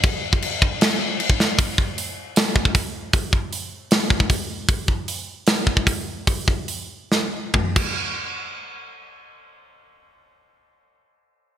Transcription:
\new DrumStaff \with { instrumentName = "Drums" } \drummode { \time 4/4 \tempo 4 = 152 <cymc bd>8. bd16 cymc8 bd8 <cymc sn>4 cymc16 bd16 sn8 | <hho bd>8 bd8 hho4 <hho sn>8 bd16 bd16 <hho bd>4 | <hho bd>8 bd8 hho4 <hho sn>8 bd16 bd16 <hho bd>4 | <hho bd>8 bd8 hho4 <hho sn>8 bd16 bd16 <hho bd>4 |
<hho bd>8 bd8 hho4 sn4 <bd toml>8 <cymc bd>8 | r4 r4 r4 r4 | r4 r4 r4 r4 | }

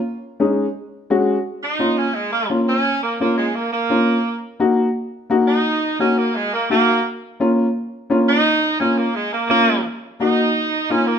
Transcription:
<<
  \new Staff \with { instrumentName = "Upright piano" } { \time 4/4 \key bes \minor \tempo 4 = 172 r4 <aes des' ees'>8 r4. <aes des' ges'>8 r8 | r4 <bes des' f'>8 r4. <bes des' f'>8 r8 | r4 <bes des' f'>8 r4. <bes des' f'>8 r8 | r4 <bes ees' ges'>8 r4. <bes ees' ges'>8 r8 |
r4 <bes ees' ges'>8 r4. <bes ees' ges'>8 r8 | r4 <bes des' f'>8 r4. <bes des' f'>8 r8 | r4 <bes des' f'>8 r4. <bes des' f'>8 r8 | r4 <bes ees' ges'>8 r4. <bes ees' f'>8 r8 | }
  \new Staff \with { instrumentName = "Saxophone section" } { \time 4/4 \key bes \minor r1 | r8 ees'4 des'8 aes8 bes8 r8 des'8~ | des'8 bes8 bes8 aes8 bes8 bes4.~ | bes8 r2. ees'8~ |
ees'4 des'8 bes8 aes8 bes8 bes4 | r2. r8 ees'8~ | ees'4 des'8 bes8 aes8 bes8 bes4 | r4 ees'2 des'8 bes8 | }
>>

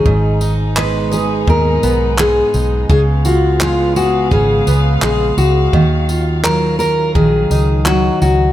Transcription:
<<
  \new Staff \with { instrumentName = "Steel-string acoustic guitar" } { \time 4/4 \key ees \minor \tempo 4 = 84 aes'4 ces''8 ces''8 bes'4 aes'4 | aes'8 ges'8 f'8 ges'8 aes'4 aes'8 ges'8~ | ges'4 bes'8 bes'8 aes'4 ges'8 ges'8 | }
  \new Staff \with { instrumentName = "Steel-string acoustic guitar" } { \clef bass \time 4/4 \key ees \minor aes,8 ees'8 aes8 aes'8 aes,8 ces'8 aes8 ees'8 | des8 f'8 aes8 aes'8 des8 ces'8 aes4 | ees8 f'8 ges8 bes'8 ees8 ees'8 ges4 | }
  \new Staff \with { instrumentName = "String section" } { \clef bass \time 4/4 \key ees \minor << { ees'1 | f''1~ | f''1 | } \\ { <ces aes>1 | <des ces'>1 | <ees ges>1 | } >> }
  \new Staff \with { instrumentName = "Fingered electric bass" } { \clef bass \time 4/4 \key ees \minor aes,,2 ees,8 ces,4 ces,8 | des,2 aes,,8 des,8 bes,,8 des,8 | ees,2 bes,,8 des,4 des,8 | }
  \new DrumStaff \with { instrumentName = "Drums" } \drummode { \time 4/4 bd8 tamb8 hc8 tamb8 bd8 tamb8 hc8 tamb8 | bd8 tamb8 hc8 tamb8 bd8 tamb8 hc8 tamb8 | bd8 tamb8 hc8 tamb8 bd8 tamb8 hc8 tamb8 | }
>>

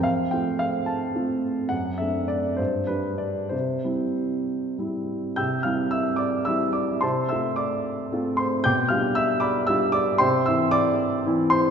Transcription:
\new Staff \with { instrumentName = "Grand piano" } { \time 6/8 \key c \major \tempo 4. = 73 << { f''8 g''8 f''8 a''4 r8 | fis''8 e''8 d''8 c''8 b'8 d''8 | c''4. r4. | <g'' e''' g'''>8 <f'' f'''>8 <e'' e'''>8 <d'' d'''>8 <e'' e'''>8 <d'' d'''>8 |
<c'' a'' c'''>8 <e'' e'''>8 <d'' d'''>4. <c'' c'''>8 | <g'' d''' g'''>8 <f'' f'''>8 <e'' e'''>8 <d'' b'' d'''>8 <e'' e'''>8 <d'' d'''>8 | <c'' g'' c'''>8 <e'' e'''>8 <d'' d'''>4. <c'' c'''>8 | } \\ { f,8 <a c' f'>4. <a c' f'>4 | fis,8 <a c' d'>4 g,8 <g d'>4 | c8 <g c' e'>4. <g c' e'>4 | c8 <g c' e'>4. <g c' e'>4 |
c8 <a c' f'>4. <a c' f'>4 | b,8 <g d' f'>4. <g d' f'>4 | c8 <e c' e'>4. <e c' e'>4 | } >> }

